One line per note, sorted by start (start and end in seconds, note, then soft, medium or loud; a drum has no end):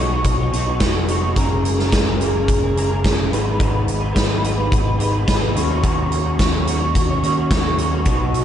0.00 0.22 B1 medium
0.00 0.39 B3 medium
0.00 0.13 D#4 medium
0.00 0.12 F#4 medium
0.00 0.11 C#5 medium
0.12 0.41 D#4 medium
0.12 0.40 F#4 medium
0.12 0.39 C#5 medium
0.24 0.51 B1 medium
0.24 kick medium
0.24 closed hi-hat medium
0.40 0.53 D#4 medium
0.40 0.53 F#4 soft
0.40 0.54 C#5 medium
0.52 0.79 B1 medium
0.52 0.79 B3 medium
0.52 0.68 D#4 medium
0.52 0.67 F#4 medium
0.52 0.66 C#5 medium
0.52 closed hi-hat soft
0.67 0.80 D#4 soft
0.67 0.80 F#4 medium
0.67 0.81 C#5 medium
0.80 1.34 F1 medium
0.80 1.06 B3 medium
0.80 1.08 D#4 medium
0.80 1.09 F#4 medium
0.80 1.09 C#5 medium
0.80 kick medium
0.80 snare medium
0.80 closed hi-hat medium
1.08 1.35 B3 medium
1.08 1.22 D#4 medium
1.08 1.21 F#4 medium
1.08 1.20 C#5 medium
1.08 closed hi-hat medium
1.21 1.35 D#4 soft
1.21 1.35 F#4 medium
1.21 1.34 C#5 medium
1.35 1.89 F#1 medium
1.35 1.90 F#3 medium
1.35 1.92 G#3 medium
1.35 1.79 C#4 medium
1.35 1.78 G#4 medium
1.35 1.76 A#4 medium
1.35 kick medium
1.35 closed hi-hat medium
1.65 closed hi-hat medium
1.77 1.92 C#4 soft
1.77 1.93 G#4 medium
1.77 1.93 A#4 medium
1.77 snare soft
1.92 2.45 F#1 medium
1.92 2.34 F#3 medium
1.92 2.19 G#3 medium
1.92 2.07 C#4 medium
1.92 2.05 G#4 medium
1.92 2.04 A#4 medium
1.92 kick medium
1.92 snare medium
1.92 closed hi-hat medium
2.05 2.20 C#4 medium
2.05 2.21 G#4 medium
2.05 2.22 A#4 medium
2.20 2.62 G#3 medium
2.20 2.35 C#4 medium
2.20 2.34 G#4 medium
2.20 2.33 A#4 medium
2.20 closed hi-hat medium
2.34 2.63 C#4 medium
2.34 2.62 G#4 medium
2.34 2.61 A#4 medium
2.48 2.75 F#1 medium
2.48 kick loud
2.48 closed hi-hat medium
2.62 2.75 C#4 medium
2.62 2.76 G#4 soft
2.62 2.76 A#4 medium
2.75 3.03 F#1 medium
2.75 3.03 G#3 medium
2.75 2.90 C#4 medium
2.75 2.88 G#4 medium
2.75 2.87 A#4 medium
2.75 closed hi-hat soft
2.89 3.03 C#4 medium
2.89 3.04 G#4 medium
2.89 3.05 A#4 medium
3.03 3.31 F#1 medium
3.03 3.30 F#3 medium
3.03 3.30 G#3 medium
3.03 3.31 C#4 medium
3.03 3.31 G#4 medium
3.03 3.31 A#4 medium
3.03 kick medium
3.03 snare medium
3.03 closed hi-hat medium
3.31 3.59 G#1 medium
3.31 3.57 G#3 medium
3.31 3.45 B3 medium
3.31 3.47 D#4 medium
3.31 3.44 B4 medium
3.31 closed hi-hat medium
3.45 3.58 B3 medium
3.45 3.59 D#4 medium
3.45 3.59 B4 medium
3.58 3.86 G#1 medium
3.58 4.12 G#3 medium
3.58 4.00 B3 medium
3.58 4.02 D#4 medium
3.58 3.99 B4 medium
3.58 kick loud
3.58 closed hi-hat medium
3.88 4.15 G#1 medium
3.88 closed hi-hat medium
4.00 4.14 B3 medium
4.00 4.14 D#4 soft
4.00 4.14 B4 medium
4.14 4.69 G#1 medium
4.14 4.40 G#3 medium
4.14 4.28 B3 medium
4.14 4.30 D#4 medium
4.14 4.27 B4 medium
4.14 kick medium
4.14 snare medium
4.14 closed hi-hat medium
4.28 4.42 B3 medium
4.28 4.42 D#4 medium
4.28 4.43 B4 medium
4.42 4.85 G#3 medium
4.42 4.56 B3 medium
4.42 4.58 D#4 medium
4.42 4.55 B4 medium
4.42 closed hi-hat medium
4.56 4.84 B3 medium
4.56 4.85 D#4 medium
4.56 4.82 B4 medium
4.72 4.98 G#1 medium
4.72 kick loud
4.72 closed hi-hat medium
4.84 4.99 B3 soft
4.84 4.99 D#4 soft
4.84 4.99 B4 medium
4.98 5.27 G#1 medium
4.98 5.25 G#3 medium
4.98 5.12 B3 medium
4.98 5.14 D#4 medium
4.98 5.11 B4 medium
4.98 closed hi-hat soft
5.12 5.27 B3 soft
5.12 5.27 D#4 medium
5.12 5.27 B4 medium
5.26 5.54 G#1 medium
5.26 5.53 G#3 medium
5.26 5.54 B3 medium
5.26 5.55 D#4 medium
5.26 5.54 B4 medium
5.26 kick medium
5.26 snare medium
5.26 closed hi-hat medium
5.54 5.82 D#2 medium
5.54 5.81 D#3 medium
5.54 5.82 A#3 medium
5.54 5.71 C#4 medium
5.54 5.69 F#4 medium
5.54 5.69 C#5 medium
5.54 closed hi-hat medium
5.69 5.83 C#4 medium
5.69 5.83 F#4 medium
5.69 5.85 C#5 medium
5.83 6.37 D#2 medium
5.83 6.38 D#3 medium
5.83 6.38 A#3 medium
5.83 6.26 C#4 medium
5.83 6.25 F#4 medium
5.83 6.23 C#5 medium
5.83 kick loud
5.83 closed hi-hat medium
6.12 closed hi-hat medium
6.24 6.40 C#4 soft
6.24 6.40 F#4 medium
6.24 6.40 C#5 medium
6.39 6.92 D#2 medium
6.39 6.81 D#3 medium
6.39 6.65 A#3 medium
6.39 6.53 C#4 medium
6.39 6.53 F#4 medium
6.39 6.51 C#5 medium
6.39 kick medium
6.39 snare medium
6.39 closed hi-hat medium
6.52 6.67 C#4 medium
6.52 6.68 F#4 medium
6.52 6.68 C#5 medium
6.66 7.09 A#3 medium
6.66 6.82 C#4 medium
6.66 6.81 F#4 medium
6.66 6.80 C#5 medium
6.66 closed hi-hat medium
6.80 7.11 C#4 medium
6.80 7.10 F#4 medium
6.80 7.09 C#5 medium
6.95 7.22 D#2 medium
6.95 kick loud
6.95 closed hi-hat medium
7.09 7.23 C#4 soft
7.09 7.24 F#4 soft
7.09 7.25 C#5 medium
7.23 7.49 D#2 medium
7.23 7.51 A#3 medium
7.23 7.40 C#4 medium
7.23 7.38 F#4 medium
7.23 7.36 C#5 medium
7.23 closed hi-hat soft
7.37 7.52 C#4 medium
7.37 7.52 F#4 medium
7.37 7.53 C#5 medium
7.51 7.77 D#2 medium
7.51 8.05 D#3 medium
7.51 7.77 A#3 medium
7.51 7.78 C#4 medium
7.51 7.79 F#4 medium
7.51 7.80 C#5 medium
7.51 kick loud
7.51 snare medium
7.51 closed hi-hat medium
7.78 8.05 D#2 medium
7.78 8.05 A#3 medium
7.78 7.94 C#4 medium
7.78 7.92 F#4 medium
7.78 7.91 C#5 medium
7.78 closed hi-hat medium
7.91 8.06 C#4 medium
7.91 8.07 F#4 medium
7.91 8.08 C#5 medium
8.05 8.33 B1 medium
8.05 8.45 B3 medium
8.05 8.45 D#4 medium
8.05 8.45 F#4 medium
8.05 8.45 C#5 medium
8.05 kick loud
8.05 closed hi-hat medium
8.34 8.45 B1 medium
8.34 closed hi-hat soft